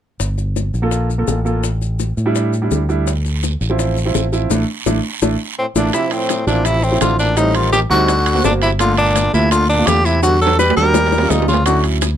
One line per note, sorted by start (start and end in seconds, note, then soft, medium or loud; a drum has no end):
0.20 0.70 G1 medium
0.20 high bongo medium
0.20 maracas medium
0.38 high bongo soft
0.38 maracas soft
0.56 high bongo soft
0.56 maracas medium
0.74 1.24 A#1 medium
0.74 high bongo soft
0.74 maracas soft
0.82 1.08 A#3 medium
0.82 1.08 F4 medium
0.82 1.08 A4 medium
0.91 high bongo medium
0.91 maracas medium
1.10 high bongo soft
1.10 maracas soft
1.18 1.37 A#3 medium
1.18 1.37 F4 medium
1.18 1.38 A4 medium
1.28 2.12 A1 medium
1.28 high bongo soft
1.28 low bongo medium
1.28 maracas medium
1.45 1.63 A#3 medium
1.45 1.64 F4 medium
1.45 1.64 A4 medium
1.45 maracas soft
1.64 high bongo medium
1.64 maracas medium
1.82 high bongo soft
1.82 maracas soft
1.99 high bongo soft
1.99 maracas medium
2.17 2.67 A2 medium
2.17 high bongo soft
2.17 maracas soft
2.26 2.51 G3 medium
2.26 2.51 D4 medium
2.26 2.52 E4 medium
2.35 high bongo medium
2.35 maracas medium
2.53 high bongo soft
2.53 maracas soft
2.62 2.81 G3 medium
2.62 2.81 D4 medium
2.62 2.81 E4 medium
2.71 3.55 D2 medium
2.71 high bongo soft
2.71 low bongo medium
2.71 maracas medium
2.89 3.07 G3 medium
2.89 3.07 D4 medium
2.89 3.07 E4 medium
2.89 maracas soft
3.07 high bongo medium
3.07 long guiro medium
3.07 maracas medium
3.25 high bongo soft
3.25 maracas soft
3.43 high bongo soft
3.43 short guiro medium
3.43 maracas medium
3.61 4.11 A1 medium
3.61 high bongo soft
3.61 short guiro medium
3.61 maracas soft
3.70 3.95 F3 medium
3.70 3.95 C4 medium
3.70 3.95 E4 medium
3.79 high bongo medium
3.79 long guiro medium
3.79 maracas medium
3.97 high bongo soft
3.97 maracas soft
4.05 4.24 F3 medium
4.05 4.25 C4 medium
4.05 4.25 E4 medium
4.15 4.48 A1 medium
4.15 high bongo soft
4.15 low bongo medium
4.15 short guiro medium
4.15 maracas medium
4.32 4.50 F3 medium
4.32 4.51 C4 medium
4.32 4.49 E4 medium
4.32 short guiro medium
4.32 maracas soft
4.50 4.64 A1 medium
4.50 4.62 A3 medium
4.50 4.62 D4 medium
4.50 4.62 E4 medium
4.50 high bongo medium
4.50 long guiro medium
4.50 maracas medium
4.86 5.00 A1 medium
4.86 4.98 A3 medium
4.86 4.98 D4 medium
4.86 4.98 E4 medium
4.86 high bongo medium
4.86 long guiro medium
4.86 maracas medium
5.22 5.35 A1 medium
5.22 5.33 A3 medium
5.22 5.34 D4 medium
5.22 5.34 E4 medium
5.22 high bongo medium
5.22 maracas medium
5.58 5.66 A2 medium
5.58 5.66 C4 medium
5.75 5.89 A1 medium
5.75 5.93 A#2 medium
5.75 5.87 A3 medium
5.75 5.87 D4 medium
5.75 5.93 D4 medium
5.75 5.87 E4 medium
5.75 high bongo medium
5.75 long guiro medium
5.75 maracas medium
5.93 6.13 C3 medium
5.93 6.31 F3 medium
5.93 6.31 C4 medium
5.93 6.32 E4 medium
5.93 6.14 E4 medium
5.93 high bongo medium
5.93 high timbale medium
5.93 long guiro medium
5.93 maracas medium
6.11 6.47 A2 medium
6.11 6.47 C4 medium
6.11 high bongo soft
6.11 high timbale medium
6.11 maracas soft
6.29 high bongo medium
6.29 high timbale medium
6.29 low timbale soft
6.29 short guiro medium
6.29 maracas medium
6.47 6.97 A1 medium
6.47 6.67 A#2 medium
6.47 6.78 F3 medium
6.47 6.78 C4 medium
6.47 6.67 D4 medium
6.47 6.79 E4 medium
6.47 high bongo soft
6.47 short guiro medium
6.47 maracas soft
6.65 6.85 C3 medium
6.65 6.85 E4 medium
6.65 high bongo medium
6.65 high timbale medium
6.65 long guiro medium
6.65 maracas medium
6.83 7.01 A2 medium
6.83 7.01 C4 medium
6.83 high bongo soft
6.83 maracas soft
6.91 7.23 F3 medium
6.91 7.23 C4 medium
6.91 7.24 E4 medium
7.01 7.85 A1 medium
7.01 7.18 D3 medium
7.01 7.18 F4 medium
7.01 high bongo soft
7.01 low bongo medium
7.01 high timbale medium
7.01 low timbale medium
7.01 short guiro medium
7.01 maracas medium
7.19 7.36 A#2 medium
7.19 7.36 D4 medium
7.19 short guiro medium
7.19 maracas soft
7.36 7.57 A2 medium
7.36 7.74 G3 medium
7.36 7.74 C4 medium
7.36 7.75 D#4 medium
7.36 7.57 D#4 medium
7.36 high bongo medium
7.36 high timbale medium
7.36 long guiro medium
7.36 maracas medium
7.55 7.72 D#3 medium
7.55 7.72 F4 medium
7.55 high bongo soft
7.55 high timbale medium
7.55 maracas soft
7.73 7.81 D#3 medium
7.73 7.81 G4 medium
7.73 high bongo medium
7.73 low timbale soft
7.73 short guiro medium
7.73 maracas medium
7.90 8.40 D2 medium
7.90 8.40 D3 medium
7.90 8.08 G3 medium
7.90 8.08 C4 medium
7.90 8.09 D#4 medium
7.90 8.41 F#4 medium
7.90 high bongo soft
7.90 short guiro medium
7.90 maracas soft
8.08 high bongo medium
8.08 high timbale medium
8.08 long guiro medium
8.08 maracas medium
8.26 high bongo soft
8.26 high timbale medium
8.26 maracas soft
8.35 8.66 A#3 medium
8.35 8.67 C4 medium
8.35 8.67 F#4 medium
8.44 9.28 G1 medium
8.44 8.52 A#2 medium
8.44 8.53 D4 medium
8.44 high bongo soft
8.44 low bongo medium
8.44 low timbale medium
8.44 short guiro medium
8.44 maracas medium
8.62 8.70 C3 medium
8.62 8.71 E4 medium
8.62 high timbale medium
8.62 short guiro medium
8.62 maracas soft
8.79 8.97 D3 medium
8.79 9.17 A3 medium
8.79 9.17 A#3 medium
8.79 8.97 F4 medium
8.79 9.18 F4 medium
8.79 high bongo medium
8.79 high timbale medium
8.79 long guiro medium
8.79 maracas medium
8.97 9.31 A#2 medium
8.97 9.31 D4 medium
8.97 high bongo soft
8.97 high timbale medium
8.97 maracas soft
9.16 high bongo medium
9.16 high timbale medium
9.16 low timbale soft
9.16 short guiro medium
9.16 maracas medium
9.33 9.84 D2 medium
9.33 9.50 C3 medium
9.33 9.65 A3 medium
9.33 9.65 A#3 medium
9.33 9.51 E4 medium
9.33 9.65 F4 medium
9.33 high bongo soft
9.33 short guiro medium
9.33 maracas soft
9.51 9.68 D3 medium
9.51 9.68 F4 medium
9.51 high bongo medium
9.51 high timbale medium
9.51 long guiro medium
9.51 maracas medium
9.69 9.89 A#2 medium
9.69 9.89 D4 medium
9.69 high bongo soft
9.69 maracas soft
9.78 10.09 A3 medium
9.78 10.10 A#3 medium
9.78 10.10 F4 medium
9.87 10.71 E2 medium
9.87 10.07 D3 medium
9.87 10.07 G4 medium
9.87 high bongo soft
9.87 low bongo medium
9.87 high timbale medium
9.87 low timbale medium
9.87 short guiro medium
9.87 maracas medium
10.05 10.22 C3 medium
10.05 10.23 E4 medium
10.05 short guiro medium
10.05 maracas soft
10.23 10.40 D3 medium
10.23 10.60 G3 medium
10.23 10.61 D4 medium
10.23 10.40 F#4 medium
10.23 10.61 F#4 medium
10.23 high bongo medium
10.23 high timbale medium
10.23 long guiro medium
10.23 maracas medium
10.41 10.58 F#3 medium
10.41 10.58 A4 medium
10.41 high bongo soft
10.41 maracas soft
10.47 high timbale medium
10.59 10.75 G3 medium
10.59 10.76 B4 medium
10.59 high bongo medium
10.59 short guiro medium
10.59 maracas medium
10.70 low timbale medium
10.76 11.27 D#2 medium
10.76 10.94 G3 medium
10.76 11.32 G3 medium
10.76 10.94 D4 medium
10.76 10.95 F#4 medium
10.76 11.32 A#4 medium
10.76 high bongo soft
10.76 short guiro medium
10.76 maracas soft
10.82 low timbale medium
10.94 high bongo medium
10.94 low timbale medium
10.94 long guiro medium
10.94 maracas medium
11.06 low timbale medium
11.12 high bongo medium
11.12 maracas soft
11.18 11.52 G3 medium
11.18 11.53 C#4 medium
11.18 11.53 F4 medium
11.18 low timbale medium
11.30 12.14 D2 medium
11.30 11.48 A#2 medium
11.30 11.48 D#4 medium
11.30 low bongo medium
11.30 low timbale medium
11.30 short guiro medium
11.30 maracas medium
11.42 low timbale medium
11.48 11.65 C#3 medium
11.48 11.65 F4 medium
11.48 low bongo medium
11.48 short guiro medium
11.48 maracas soft
11.54 low timbale medium
11.65 11.83 D3 medium
11.65 12.03 F#3 medium
11.65 12.04 C#4 medium
11.65 12.04 E4 medium
11.65 11.83 F#4 medium
11.65 high bongo medium
11.65 high timbale medium
11.65 long guiro medium
11.65 maracas medium
11.84 high bongo soft
11.84 high timbale medium
11.84 maracas soft
12.01 high bongo medium
12.01 high timbale medium
12.01 low timbale soft
12.01 short guiro medium
12.01 maracas medium